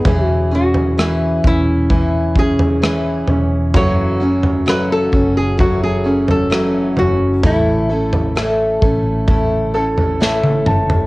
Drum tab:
SD |----r-------r---|----r-------r---|----r-------o---|
T1 |----------------|----------------|-------------o--|
T2 |----------------|----------------|--------------o-|
FT |o--o-------o--o-|o--o----o--o--o-|o--o----o--o---o|
BD |o-----o-o-o-----|o-----o-o-------|o-----o-o-------|